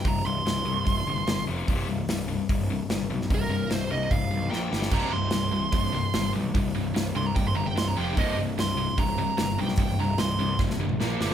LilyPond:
<<
  \new Staff \with { instrumentName = "Lead electric guitar" } { \time 4/4 \key bes \mixolydian \tempo 4 = 148 bes''8 c'''2. r8 | r1 | bes'4 c''8 ees''8 f''4 g''4 | bes''8 c'''2. r8 |
r4. c'''16 bes''16 g''16 c'''16 bes''16 g''16 c'''16 bes''16 g''8 | ees''8 r8 c'''4 bes''4. g''8~ | g''8 bes''8 c'''4 r2 | }
  \new Staff \with { instrumentName = "Distorted electric guitar" } { \clef bass \time 4/4 \key bes \mixolydian <c, g,>8 <c, g,>8 <c, g,>8 <c, g,>8 <c, g,>8 <c, g,>8 <c, g,>8 <f, c f>8 | <c, g, c>8 <c, g,>8 <c, g,>8 <c, g,>8 <c, g,>8 <c, g,>8 <c, g,>8 <c, g,>8 | <c, g,>8 <c, g,>8 <c, g,>8 <c, g,>8 <c, g,>8 <c, g,>8 <bes, f bes>8 <g, d g>8 | <c, g, c>8 <c, g,>8 <c, g,>8 <c, g,>8 <c, g,>8 <c, g,>8 <c, g,>8 <c, g,>8 |
<c, g,>8 <c, g,>8 <c, g,>8 <c, g,>8 <c, g,>8 <c, g,>8 <c, g,>8 <f, c f>8 | <c, g, c>8 <c, g,>8 <c, g,>8 <c, g,>8 <c, g,>8 <c, g,>8 <c, g,>8 <c, g,>8 | <c, g,>8 <c, g,>8 <c, g,>8 <c, g,>8 <c, g,>8 <c, g,>8 <bes, f bes>8 <g, d g>8 | }
  \new Staff \with { instrumentName = "Distorted electric guitar" } { \clef bass \time 4/4 \key bes \mixolydian r1 | r1 | r1 | <c, g, c>8 <c, g,>8 <c, g,>8 <c, g,>8 <c, g,>8 <c, g,>8 <c, g,>8 <c, g,>8 |
<c, g,>8 <c, g,>8 <c, g,>8 <c, g,>8 <c, g,>8 <c, g,>8 <c, g,>8 <f, c f>8 | <c, g, c>8 <c, g,>8 <c, g,>8 <c, g,>8 <c, g,>8 <c, g,>8 <c, g,>8 <c, g,>8 | <c, g,>8 <c, g,>8 <c, g,>8 <c, g,>8 <c, g,>8 <c, g,>8 <bes, f bes>8 <g, d g>8 | }
  \new Staff \with { instrumentName = "Picked electric bass" } { \clef bass \time 4/4 \key bes \mixolydian c,,8 c,,8 c,,8 c,8 c,,8 g,,8 g,,8 f,,8 | c,,8 c,,8 c,,4 c,,4 g,,8 b,,8 | c,,8 c,,8 c,,8 c,8 c,,8 b,,8 bes,,8 g,,8 | c,,8 c,,8 c,,4 c,,4 g,,8 b,,8 |
c,,8 c,,8 c,,8 c,8 c,,8 g,,8 c,,8 f,,8 | c,,8 c,,8 c,,4 c,,4 g,,8 b,,8 | c,,8 c,,8 c,,8 c,8 c,,8 g,,8 bes,,8 g,,8 | }
  \new DrumStaff \with { instrumentName = "Drums" } \drummode { \time 4/4 <hho bd>4 <hho sn>4 <hho bd>4 <hho sn>4 | <hho bd>4 <hho sn>4 <hho bd>4 <hho sn>8. sn16 | <hho bd>4 <hho sn>4 <hho bd>4 sn8 sn16 sn16 | <cymc bd>4 <hho sn>4 <hho bd>4 <hho sn>4 |
<hho bd>4 <hho sn>4 <hho bd>4 <hho sn>4 | <hho bd>4 <hho sn>4 <hho bd>4 <hho sn>8. sn16 | <hho bd>4 <hho sn>4 <bd sn>16 sn8 toml16 sn8 sn8 | }
>>